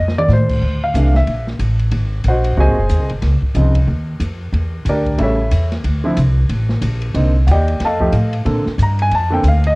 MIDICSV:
0, 0, Header, 1, 5, 480
1, 0, Start_track
1, 0, Tempo, 326619
1, 907, Time_signature, 4, 2, 24, 8
1, 14332, End_track
2, 0, Start_track
2, 0, Title_t, "Grand piano"
2, 0, Program_c, 0, 0
2, 0, Note_on_c, 0, 75, 86
2, 222, Note_off_c, 0, 75, 0
2, 269, Note_on_c, 0, 74, 105
2, 435, Note_off_c, 0, 74, 0
2, 484, Note_on_c, 0, 72, 79
2, 1178, Note_off_c, 0, 72, 0
2, 1228, Note_on_c, 0, 77, 85
2, 1392, Note_on_c, 0, 48, 52
2, 1400, Note_on_c, 0, 57, 43
2, 1403, Note_on_c, 0, 52, 44
2, 1403, Note_on_c, 0, 62, 62
2, 1654, Note_off_c, 0, 48, 0
2, 1659, Note_off_c, 0, 57, 0
2, 1660, Note_off_c, 0, 52, 0
2, 1660, Note_off_c, 0, 62, 0
2, 1662, Note_off_c, 0, 77, 0
2, 1707, Note_on_c, 0, 76, 80
2, 2141, Note_off_c, 0, 76, 0
2, 3354, Note_on_c, 0, 78, 74
2, 3360, Note_on_c, 0, 72, 63
2, 3362, Note_on_c, 0, 66, 59
2, 3366, Note_on_c, 0, 75, 57
2, 3762, Note_off_c, 0, 66, 0
2, 3777, Note_off_c, 0, 78, 0
2, 3778, Note_on_c, 0, 48, 67
2, 3780, Note_off_c, 0, 72, 0
2, 3781, Note_on_c, 0, 58, 60
2, 3784, Note_off_c, 0, 75, 0
2, 3784, Note_on_c, 0, 66, 77
2, 3785, Note_on_c, 0, 56, 56
2, 3825, Note_on_c, 0, 80, 93
2, 3828, Note_on_c, 0, 68, 74
2, 3831, Note_on_c, 0, 75, 74
2, 3832, Note_on_c, 0, 72, 71
2, 4047, Note_off_c, 0, 48, 0
2, 4049, Note_off_c, 0, 58, 0
2, 4050, Note_off_c, 0, 56, 0
2, 4050, Note_off_c, 0, 66, 0
2, 4527, Note_off_c, 0, 80, 0
2, 4528, Note_off_c, 0, 68, 0
2, 4530, Note_off_c, 0, 75, 0
2, 4531, Note_off_c, 0, 72, 0
2, 5215, Note_on_c, 0, 49, 58
2, 5221, Note_on_c, 0, 53, 52
2, 5230, Note_on_c, 0, 63, 60
2, 5231, Note_on_c, 0, 60, 53
2, 5485, Note_off_c, 0, 49, 0
2, 5488, Note_off_c, 0, 53, 0
2, 5493, Note_off_c, 0, 63, 0
2, 5494, Note_off_c, 0, 60, 0
2, 7188, Note_on_c, 0, 62, 56
2, 7190, Note_on_c, 0, 74, 75
2, 7194, Note_on_c, 0, 70, 64
2, 7197, Note_on_c, 0, 67, 58
2, 7613, Note_off_c, 0, 62, 0
2, 7613, Note_on_c, 0, 49, 65
2, 7615, Note_off_c, 0, 74, 0
2, 7615, Note_on_c, 0, 55, 57
2, 7617, Note_off_c, 0, 70, 0
2, 7618, Note_off_c, 0, 67, 0
2, 7622, Note_on_c, 0, 57, 58
2, 7628, Note_on_c, 0, 64, 71
2, 7665, Note_off_c, 0, 64, 0
2, 7684, Note_on_c, 0, 76, 74
2, 7687, Note_on_c, 0, 64, 54
2, 7690, Note_on_c, 0, 69, 54
2, 7694, Note_on_c, 0, 73, 60
2, 7884, Note_off_c, 0, 49, 0
2, 7885, Note_off_c, 0, 55, 0
2, 7889, Note_off_c, 0, 57, 0
2, 8377, Note_off_c, 0, 76, 0
2, 8379, Note_off_c, 0, 64, 0
2, 8381, Note_off_c, 0, 69, 0
2, 8382, Note_off_c, 0, 73, 0
2, 8875, Note_on_c, 0, 50, 64
2, 8886, Note_on_c, 0, 53, 59
2, 8886, Note_on_c, 0, 60, 60
2, 8899, Note_on_c, 0, 64, 73
2, 9043, Note_off_c, 0, 50, 0
2, 9048, Note_off_c, 0, 53, 0
2, 9049, Note_off_c, 0, 60, 0
2, 9055, Note_off_c, 0, 64, 0
2, 10493, Note_on_c, 0, 58, 49
2, 10496, Note_on_c, 0, 50, 57
2, 10506, Note_on_c, 0, 60, 56
2, 10509, Note_on_c, 0, 63, 61
2, 10765, Note_off_c, 0, 58, 0
2, 10766, Note_off_c, 0, 50, 0
2, 10771, Note_off_c, 0, 60, 0
2, 10773, Note_off_c, 0, 63, 0
2, 10974, Note_on_c, 0, 78, 55
2, 11005, Note_off_c, 0, 78, 0
2, 11038, Note_on_c, 0, 67, 68
2, 11039, Note_on_c, 0, 75, 62
2, 11043, Note_on_c, 0, 79, 81
2, 11045, Note_on_c, 0, 74, 63
2, 11460, Note_off_c, 0, 67, 0
2, 11461, Note_off_c, 0, 75, 0
2, 11463, Note_off_c, 0, 74, 0
2, 11463, Note_off_c, 0, 79, 0
2, 11532, Note_on_c, 0, 81, 84
2, 11537, Note_on_c, 0, 69, 62
2, 11543, Note_on_c, 0, 75, 69
2, 11544, Note_on_c, 0, 77, 68
2, 11760, Note_on_c, 0, 53, 61
2, 11761, Note_on_c, 0, 57, 63
2, 11766, Note_on_c, 0, 63, 61
2, 11775, Note_on_c, 0, 67, 74
2, 11926, Note_off_c, 0, 53, 0
2, 11927, Note_off_c, 0, 57, 0
2, 11929, Note_off_c, 0, 63, 0
2, 11934, Note_off_c, 0, 67, 0
2, 12222, Note_off_c, 0, 81, 0
2, 12225, Note_off_c, 0, 69, 0
2, 12229, Note_off_c, 0, 75, 0
2, 12229, Note_off_c, 0, 77, 0
2, 12422, Note_on_c, 0, 50, 57
2, 12425, Note_on_c, 0, 58, 50
2, 12428, Note_on_c, 0, 60, 54
2, 12431, Note_on_c, 0, 69, 61
2, 12690, Note_off_c, 0, 50, 0
2, 12692, Note_off_c, 0, 58, 0
2, 12693, Note_off_c, 0, 60, 0
2, 12695, Note_off_c, 0, 69, 0
2, 12969, Note_on_c, 0, 82, 76
2, 13225, Note_off_c, 0, 82, 0
2, 13255, Note_on_c, 0, 80, 97
2, 13408, Note_off_c, 0, 80, 0
2, 13444, Note_on_c, 0, 81, 101
2, 13674, Note_on_c, 0, 50, 68
2, 13690, Note_on_c, 0, 58, 63
2, 13695, Note_on_c, 0, 60, 58
2, 13698, Note_on_c, 0, 69, 72
2, 13703, Note_off_c, 0, 81, 0
2, 13720, Note_on_c, 0, 79, 88
2, 13844, Note_off_c, 0, 50, 0
2, 13852, Note_off_c, 0, 58, 0
2, 13855, Note_off_c, 0, 60, 0
2, 13856, Note_off_c, 0, 69, 0
2, 13881, Note_off_c, 0, 79, 0
2, 13936, Note_on_c, 0, 77, 81
2, 14189, Note_off_c, 0, 77, 0
2, 14209, Note_on_c, 0, 75, 101
2, 14332, Note_off_c, 0, 75, 0
2, 14332, End_track
3, 0, Start_track
3, 0, Title_t, "Upright bass"
3, 0, Program_c, 1, 32
3, 0, Note_on_c, 1, 41, 77
3, 408, Note_off_c, 1, 41, 0
3, 417, Note_on_c, 1, 45, 82
3, 887, Note_off_c, 1, 45, 0
3, 904, Note_on_c, 1, 38, 75
3, 1370, Note_off_c, 1, 38, 0
3, 1380, Note_on_c, 1, 36, 90
3, 1848, Note_off_c, 1, 36, 0
3, 1864, Note_on_c, 1, 34, 75
3, 2330, Note_off_c, 1, 34, 0
3, 2340, Note_on_c, 1, 33, 78
3, 2808, Note_off_c, 1, 33, 0
3, 2816, Note_on_c, 1, 32, 77
3, 3286, Note_off_c, 1, 32, 0
3, 3298, Note_on_c, 1, 34, 84
3, 3767, Note_off_c, 1, 34, 0
3, 3777, Note_on_c, 1, 36, 78
3, 3939, Note_off_c, 1, 36, 0
3, 3939, Note_on_c, 1, 32, 58
3, 4084, Note_off_c, 1, 32, 0
3, 4093, Note_on_c, 1, 30, 60
3, 4247, Note_off_c, 1, 30, 0
3, 4256, Note_on_c, 1, 39, 80
3, 4401, Note_off_c, 1, 39, 0
3, 4401, Note_on_c, 1, 36, 53
3, 4554, Note_off_c, 1, 36, 0
3, 4562, Note_on_c, 1, 32, 65
3, 4721, Note_off_c, 1, 32, 0
3, 4735, Note_on_c, 1, 37, 80
3, 5014, Note_off_c, 1, 37, 0
3, 5212, Note_on_c, 1, 36, 92
3, 5683, Note_off_c, 1, 36, 0
3, 5693, Note_on_c, 1, 39, 76
3, 6160, Note_off_c, 1, 39, 0
3, 6169, Note_on_c, 1, 41, 78
3, 6642, Note_off_c, 1, 41, 0
3, 6651, Note_on_c, 1, 40, 80
3, 7123, Note_off_c, 1, 40, 0
3, 7130, Note_on_c, 1, 38, 86
3, 7602, Note_off_c, 1, 38, 0
3, 7617, Note_on_c, 1, 33, 78
3, 8086, Note_off_c, 1, 33, 0
3, 8103, Note_on_c, 1, 40, 74
3, 8569, Note_off_c, 1, 40, 0
3, 8586, Note_on_c, 1, 38, 77
3, 9051, Note_off_c, 1, 38, 0
3, 9061, Note_on_c, 1, 36, 90
3, 9528, Note_off_c, 1, 36, 0
3, 9543, Note_on_c, 1, 33, 78
3, 10005, Note_off_c, 1, 33, 0
3, 10014, Note_on_c, 1, 34, 85
3, 10485, Note_off_c, 1, 34, 0
3, 10497, Note_on_c, 1, 36, 80
3, 10967, Note_off_c, 1, 36, 0
3, 10982, Note_on_c, 1, 39, 94
3, 11449, Note_off_c, 1, 39, 0
3, 11463, Note_on_c, 1, 41, 81
3, 11930, Note_off_c, 1, 41, 0
3, 11938, Note_on_c, 1, 45, 84
3, 12408, Note_off_c, 1, 45, 0
3, 12424, Note_on_c, 1, 46, 85
3, 12700, Note_off_c, 1, 46, 0
3, 12905, Note_on_c, 1, 43, 96
3, 13371, Note_off_c, 1, 43, 0
3, 13391, Note_on_c, 1, 41, 82
3, 13855, Note_off_c, 1, 41, 0
3, 13862, Note_on_c, 1, 38, 90
3, 14330, Note_off_c, 1, 38, 0
3, 14332, End_track
4, 0, Start_track
4, 0, Title_t, "Muted upright bass strokes"
4, 5027, Note_on_c, 9, 29, 37
4, 5174, Note_off_c, 9, 29, 0
4, 12730, Note_on_c, 9, 29, 40
4, 12877, Note_off_c, 9, 29, 0
4, 14332, End_track
5, 0, Start_track
5, 0, Title_t, "Drums"
5, 121, Note_on_c, 9, 38, 56
5, 268, Note_off_c, 9, 38, 0
5, 273, Note_on_c, 9, 47, 89
5, 420, Note_off_c, 9, 47, 0
5, 433, Note_on_c, 9, 38, 55
5, 433, Note_on_c, 9, 44, 52
5, 579, Note_off_c, 9, 38, 0
5, 579, Note_off_c, 9, 44, 0
5, 725, Note_on_c, 9, 36, 64
5, 725, Note_on_c, 9, 49, 72
5, 871, Note_off_c, 9, 49, 0
5, 872, Note_off_c, 9, 36, 0
5, 1390, Note_on_c, 9, 36, 22
5, 1392, Note_on_c, 9, 44, 62
5, 1392, Note_on_c, 9, 51, 61
5, 1537, Note_off_c, 9, 36, 0
5, 1539, Note_off_c, 9, 44, 0
5, 1539, Note_off_c, 9, 51, 0
5, 1682, Note_on_c, 9, 38, 48
5, 1829, Note_off_c, 9, 38, 0
5, 1865, Note_on_c, 9, 51, 52
5, 1868, Note_on_c, 9, 36, 25
5, 2012, Note_off_c, 9, 51, 0
5, 2015, Note_off_c, 9, 36, 0
5, 2163, Note_on_c, 9, 38, 36
5, 2310, Note_off_c, 9, 38, 0
5, 2340, Note_on_c, 9, 44, 43
5, 2340, Note_on_c, 9, 51, 62
5, 2345, Note_on_c, 9, 36, 17
5, 2487, Note_off_c, 9, 44, 0
5, 2487, Note_off_c, 9, 51, 0
5, 2492, Note_off_c, 9, 36, 0
5, 2635, Note_on_c, 9, 51, 38
5, 2782, Note_off_c, 9, 51, 0
5, 2812, Note_on_c, 9, 51, 62
5, 2821, Note_on_c, 9, 36, 22
5, 2959, Note_off_c, 9, 51, 0
5, 2968, Note_off_c, 9, 36, 0
5, 3291, Note_on_c, 9, 44, 44
5, 3291, Note_on_c, 9, 51, 62
5, 3301, Note_on_c, 9, 36, 24
5, 3438, Note_off_c, 9, 44, 0
5, 3438, Note_off_c, 9, 51, 0
5, 3448, Note_off_c, 9, 36, 0
5, 3590, Note_on_c, 9, 51, 54
5, 3737, Note_off_c, 9, 51, 0
5, 3780, Note_on_c, 9, 36, 25
5, 3927, Note_off_c, 9, 36, 0
5, 4254, Note_on_c, 9, 44, 53
5, 4254, Note_on_c, 9, 51, 64
5, 4259, Note_on_c, 9, 36, 21
5, 4401, Note_off_c, 9, 44, 0
5, 4401, Note_off_c, 9, 51, 0
5, 4406, Note_off_c, 9, 36, 0
5, 4549, Note_on_c, 9, 51, 39
5, 4696, Note_off_c, 9, 51, 0
5, 4734, Note_on_c, 9, 38, 35
5, 4734, Note_on_c, 9, 51, 63
5, 4738, Note_on_c, 9, 36, 23
5, 4881, Note_off_c, 9, 38, 0
5, 4881, Note_off_c, 9, 51, 0
5, 4885, Note_off_c, 9, 36, 0
5, 5032, Note_on_c, 9, 36, 49
5, 5179, Note_off_c, 9, 36, 0
5, 5214, Note_on_c, 9, 44, 53
5, 5214, Note_on_c, 9, 51, 57
5, 5361, Note_off_c, 9, 44, 0
5, 5361, Note_off_c, 9, 51, 0
5, 5510, Note_on_c, 9, 51, 62
5, 5511, Note_on_c, 9, 36, 42
5, 5657, Note_off_c, 9, 51, 0
5, 5658, Note_off_c, 9, 36, 0
5, 5695, Note_on_c, 9, 36, 25
5, 5842, Note_off_c, 9, 36, 0
5, 6174, Note_on_c, 9, 44, 57
5, 6174, Note_on_c, 9, 51, 61
5, 6175, Note_on_c, 9, 36, 21
5, 6321, Note_off_c, 9, 44, 0
5, 6321, Note_off_c, 9, 51, 0
5, 6322, Note_off_c, 9, 36, 0
5, 6659, Note_on_c, 9, 36, 22
5, 6667, Note_on_c, 9, 51, 48
5, 6806, Note_off_c, 9, 36, 0
5, 6814, Note_off_c, 9, 51, 0
5, 7138, Note_on_c, 9, 36, 22
5, 7138, Note_on_c, 9, 44, 49
5, 7138, Note_on_c, 9, 51, 63
5, 7285, Note_off_c, 9, 36, 0
5, 7285, Note_off_c, 9, 44, 0
5, 7285, Note_off_c, 9, 51, 0
5, 7436, Note_on_c, 9, 36, 54
5, 7441, Note_on_c, 9, 51, 39
5, 7583, Note_off_c, 9, 36, 0
5, 7588, Note_off_c, 9, 51, 0
5, 7619, Note_on_c, 9, 36, 22
5, 7619, Note_on_c, 9, 51, 57
5, 7766, Note_off_c, 9, 36, 0
5, 7766, Note_off_c, 9, 51, 0
5, 8102, Note_on_c, 9, 44, 62
5, 8102, Note_on_c, 9, 51, 72
5, 8105, Note_on_c, 9, 36, 24
5, 8249, Note_off_c, 9, 44, 0
5, 8249, Note_off_c, 9, 51, 0
5, 8252, Note_off_c, 9, 36, 0
5, 8404, Note_on_c, 9, 38, 35
5, 8404, Note_on_c, 9, 51, 41
5, 8551, Note_off_c, 9, 38, 0
5, 8551, Note_off_c, 9, 51, 0
5, 8585, Note_on_c, 9, 36, 18
5, 8585, Note_on_c, 9, 51, 61
5, 8732, Note_off_c, 9, 36, 0
5, 8732, Note_off_c, 9, 51, 0
5, 9063, Note_on_c, 9, 44, 57
5, 9063, Note_on_c, 9, 51, 67
5, 9067, Note_on_c, 9, 36, 21
5, 9210, Note_off_c, 9, 44, 0
5, 9210, Note_off_c, 9, 51, 0
5, 9214, Note_off_c, 9, 36, 0
5, 9541, Note_on_c, 9, 51, 61
5, 9546, Note_on_c, 9, 36, 24
5, 9688, Note_off_c, 9, 51, 0
5, 9693, Note_off_c, 9, 36, 0
5, 9834, Note_on_c, 9, 38, 43
5, 9981, Note_off_c, 9, 38, 0
5, 10018, Note_on_c, 9, 44, 50
5, 10018, Note_on_c, 9, 51, 74
5, 10023, Note_on_c, 9, 36, 17
5, 10165, Note_off_c, 9, 44, 0
5, 10165, Note_off_c, 9, 51, 0
5, 10170, Note_off_c, 9, 36, 0
5, 10310, Note_on_c, 9, 51, 40
5, 10457, Note_off_c, 9, 51, 0
5, 10501, Note_on_c, 9, 51, 63
5, 10502, Note_on_c, 9, 36, 23
5, 10648, Note_off_c, 9, 51, 0
5, 10649, Note_off_c, 9, 36, 0
5, 10985, Note_on_c, 9, 44, 50
5, 10985, Note_on_c, 9, 51, 70
5, 11132, Note_off_c, 9, 44, 0
5, 11132, Note_off_c, 9, 51, 0
5, 11283, Note_on_c, 9, 51, 38
5, 11430, Note_off_c, 9, 51, 0
5, 11463, Note_on_c, 9, 38, 38
5, 11463, Note_on_c, 9, 51, 68
5, 11464, Note_on_c, 9, 36, 28
5, 11610, Note_off_c, 9, 38, 0
5, 11610, Note_off_c, 9, 51, 0
5, 11611, Note_off_c, 9, 36, 0
5, 11760, Note_on_c, 9, 36, 58
5, 11907, Note_off_c, 9, 36, 0
5, 11938, Note_on_c, 9, 44, 61
5, 11938, Note_on_c, 9, 51, 69
5, 12085, Note_off_c, 9, 44, 0
5, 12085, Note_off_c, 9, 51, 0
5, 12239, Note_on_c, 9, 51, 46
5, 12386, Note_off_c, 9, 51, 0
5, 12427, Note_on_c, 9, 36, 20
5, 12429, Note_on_c, 9, 51, 55
5, 12574, Note_off_c, 9, 36, 0
5, 12576, Note_off_c, 9, 51, 0
5, 12728, Note_on_c, 9, 38, 37
5, 12875, Note_off_c, 9, 38, 0
5, 12911, Note_on_c, 9, 36, 22
5, 12918, Note_on_c, 9, 44, 60
5, 12918, Note_on_c, 9, 51, 67
5, 13058, Note_off_c, 9, 36, 0
5, 13064, Note_off_c, 9, 44, 0
5, 13064, Note_off_c, 9, 51, 0
5, 13210, Note_on_c, 9, 51, 42
5, 13356, Note_off_c, 9, 51, 0
5, 13392, Note_on_c, 9, 36, 22
5, 13393, Note_on_c, 9, 51, 61
5, 13539, Note_off_c, 9, 36, 0
5, 13540, Note_off_c, 9, 51, 0
5, 13871, Note_on_c, 9, 36, 23
5, 13872, Note_on_c, 9, 44, 51
5, 13872, Note_on_c, 9, 51, 66
5, 14018, Note_off_c, 9, 36, 0
5, 14019, Note_off_c, 9, 44, 0
5, 14019, Note_off_c, 9, 51, 0
5, 14164, Note_on_c, 9, 51, 45
5, 14311, Note_off_c, 9, 51, 0
5, 14332, End_track
0, 0, End_of_file